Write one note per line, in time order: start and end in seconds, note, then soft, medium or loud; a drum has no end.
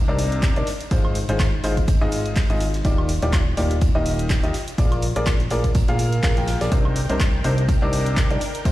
0.08 0.54 C2 medium
0.08 0.53 C3 medium
0.08 0.53 D4 medium
0.08 0.53 D#4 medium
0.08 0.53 A#4 medium
0.08 0.53 D5 loud
0.19 closed hi-hat medium
0.19 open hi-hat loud
0.32 closed hi-hat soft
0.43 kick loud
0.43 snare loud
0.43 clap loud
0.43 closed hi-hat medium
0.56 0.64 C2 medium
0.56 0.66 D4 medium
0.56 0.66 D#4 medium
0.56 0.66 A#4 medium
0.56 0.66 D5 medium
0.56 closed hi-hat soft
0.66 snare soft
0.66 closed hi-hat medium
0.66 open hi-hat loud
0.81 closed hi-hat soft
0.91 1.26 G#1 loud
0.91 1.15 G#3 medium
0.91 1.15 D#4 medium
0.91 1.15 F4 medium
0.91 1.15 G#4 medium
0.91 1.15 C5 medium
0.91 kick loud
0.91 closed hi-hat medium
1.05 high woodblock medium
1.15 closed hi-hat medium
1.15 open hi-hat loud
1.29 1.62 G#1 loud
1.29 1.43 G#3 medium
1.29 1.43 D#4 medium
1.29 1.43 F4 medium
1.29 1.43 G#4 medium
1.29 1.43 C5 medium
1.29 closed hi-hat medium
1.40 kick loud
1.40 snare loud
1.40 clap loud
1.40 closed hi-hat medium
1.40 high woodblock medium
1.64 1.99 G#1 loud
1.64 1.80 G#3 medium
1.64 1.80 D#4 medium
1.64 1.80 F4 medium
1.64 1.80 G#4 medium
1.64 1.80 C5 medium
1.64 closed hi-hat medium
1.64 open hi-hat loud
1.77 kick medium
1.77 closed hi-hat medium
1.77 closed hi-hat soft
1.88 kick loud
1.88 closed hi-hat medium
2.01 2.47 G#1 medium
2.01 2.47 G#3 medium
2.01 2.47 D#4 medium
2.01 2.47 F4 medium
2.01 2.47 G#4 medium
2.01 2.47 D#5 loud
2.12 closed hi-hat medium
2.12 open hi-hat loud
2.26 closed hi-hat medium
2.36 kick loud
2.36 snare loud
2.36 clap loud
2.36 closed hi-hat medium
2.36 open hi-hat medium
2.50 2.83 G#1 medium
2.50 2.64 G#3 medium
2.50 2.64 D#4 medium
2.50 2.64 F4 medium
2.50 2.64 G#4 medium
2.50 2.64 D#5 medium
2.50 closed hi-hat soft
2.60 closed hi-hat medium
2.60 open hi-hat loud
2.74 snare soft
2.74 closed hi-hat medium
2.85 3.20 D#1 loud
2.85 3.09 D#3 medium
2.85 3.09 D#4 medium
2.85 3.09 F4 medium
2.85 3.09 G4 medium
2.85 3.09 D5 medium
2.85 kick loud
2.85 closed hi-hat medium
2.98 high woodblock medium
3.09 closed hi-hat medium
3.09 open hi-hat loud
3.22 3.55 D#1 loud
3.22 3.37 D#3 medium
3.22 3.37 D#4 medium
3.22 3.36 F4 medium
3.22 3.37 G4 medium
3.22 3.36 D5 medium
3.22 closed hi-hat medium
3.33 kick loud
3.33 snare loud
3.33 clap loud
3.33 closed hi-hat medium
3.33 high woodblock medium
3.57 3.92 D#1 loud
3.57 3.74 D#3 medium
3.57 3.73 D#4 medium
3.57 3.74 F4 medium
3.57 3.74 G4 medium
3.57 3.74 D5 medium
3.57 closed hi-hat medium
3.57 open hi-hat loud
3.71 closed hi-hat medium
3.81 kick loud
3.81 closed hi-hat medium
3.95 4.41 D#1 medium
3.95 4.40 D#3 medium
3.95 4.40 D#4 medium
3.95 4.40 F4 medium
3.95 4.40 G4 medium
3.95 4.40 D#5 loud
4.06 closed hi-hat medium
4.06 open hi-hat medium
4.19 closed hi-hat medium
4.29 kick loud
4.29 snare loud
4.29 clap loud
4.29 closed hi-hat medium
4.43 4.51 D#2 medium
4.43 4.53 D#4 medium
4.43 4.53 F4 medium
4.43 4.53 G4 medium
4.43 4.53 D#5 medium
4.43 closed hi-hat soft
4.54 snare soft
4.54 closed hi-hat medium
4.54 open hi-hat loud
4.68 closed hi-hat medium
4.68 closed hi-hat soft
4.78 5.13 A#1 loud
4.78 5.03 A#3 medium
4.78 5.03 F4 medium
4.78 5.03 G#4 medium
4.78 5.03 A#4 medium
4.78 5.03 D5 medium
4.78 kick loud
4.78 closed hi-hat medium
4.92 closed hi-hat soft
4.92 high woodblock medium
5.02 open hi-hat loud
5.16 5.49 A#1 loud
5.16 5.30 A#3 medium
5.16 5.30 F4 medium
5.16 5.30 G#4 medium
5.16 5.30 A#4 medium
5.16 5.30 D5 medium
5.16 closed hi-hat medium
5.26 kick loud
5.26 snare loud
5.26 clap loud
5.26 closed hi-hat medium
5.26 high woodblock medium
5.40 closed hi-hat soft
5.50 5.86 A#1 loud
5.50 5.67 A#3 medium
5.50 5.67 F4 medium
5.50 5.67 G#4 medium
5.50 5.67 A#4 medium
5.50 5.67 D5 medium
5.50 closed hi-hat medium
5.50 open hi-hat loud
5.64 kick medium
5.64 closed hi-hat medium
5.64 closed hi-hat soft
5.75 kick loud
5.75 closed hi-hat medium
5.88 6.21 A#1 medium
5.88 6.21 A#3 medium
5.88 6.21 F4 medium
5.88 6.21 G#4 medium
5.88 6.21 A#4 medium
5.88 6.21 F5 loud
5.88 closed hi-hat soft
5.99 closed hi-hat medium
5.99 open hi-hat loud
6.13 closed hi-hat medium
6.23 6.34 A#1 medium
6.23 6.35 A#3 medium
6.23 6.35 F4 medium
6.23 6.35 G#4 medium
6.23 6.35 A#4 medium
6.23 6.35 F5 medium
6.23 kick loud
6.23 snare loud
6.23 clap loud
6.23 closed hi-hat medium
6.23 open hi-hat medium
6.37 6.58 A#1 medium
6.37 6.58 A#3 medium
6.37 6.58 F4 medium
6.37 6.58 G#4 medium
6.37 6.58 A#4 medium
6.37 6.58 G5 medium
6.37 closed hi-hat soft
6.47 snare loud
6.47 closed hi-hat medium
6.47 open hi-hat loud
6.61 6.70 A#1 medium
6.61 6.70 F4 medium
6.61 6.70 G#4 medium
6.61 6.70 A#4 medium
6.61 6.70 D5 medium
6.61 snare loud
6.61 closed hi-hat medium
6.72 7.07 C2 loud
6.72 6.96 C3 medium
6.72 6.96 D4 medium
6.72 6.96 D#4 medium
6.72 8.72 A#4 medium
6.72 6.96 A#4 medium
6.72 6.96 C5 medium
6.72 8.72 G5 medium
6.72 kick loud
6.72 closed hi-hat medium
6.85 high woodblock medium
6.96 closed hi-hat medium
6.96 open hi-hat loud
7.09 7.42 C2 loud
7.09 7.24 C3 medium
7.09 7.24 D4 medium
7.09 7.24 D#4 medium
7.09 7.24 A#4 medium
7.09 7.24 C5 medium
7.09 closed hi-hat medium
7.20 kick loud
7.20 snare loud
7.20 clap loud
7.20 closed hi-hat medium
7.20 high woodblock medium
7.44 7.79 C2 loud
7.44 7.61 C3 medium
7.44 7.61 D4 medium
7.44 7.61 D#4 medium
7.44 7.61 A#4 medium
7.44 7.61 C5 medium
7.44 closed hi-hat medium
7.44 open hi-hat loud
7.58 closed hi-hat medium
7.69 kick loud
7.69 closed hi-hat medium
7.82 8.28 C2 medium
7.82 8.27 C3 medium
7.82 8.27 D4 medium
7.82 8.27 D#4 medium
7.82 8.27 A#4 medium
7.82 8.27 D5 loud
7.93 closed hi-hat medium
7.93 open hi-hat loud
8.06 closed hi-hat medium
8.17 kick loud
8.17 snare loud
8.17 clap loud
8.17 closed hi-hat medium
8.30 8.38 C2 loud
8.30 8.40 D4 medium
8.30 8.40 D#4 medium
8.30 8.40 A#4 medium
8.30 8.40 D5 medium
8.30 closed hi-hat soft
8.41 snare soft
8.41 closed hi-hat medium
8.41 open hi-hat loud
8.54 closed hi-hat soft
8.54 closed hi-hat medium
8.65 8.72 G#1 loud
8.65 8.72 G#3 medium
8.65 8.72 D#4 medium
8.65 8.72 F4 medium
8.65 8.72 G#4 medium
8.65 8.72 C5 medium
8.65 kick loud
8.65 closed hi-hat medium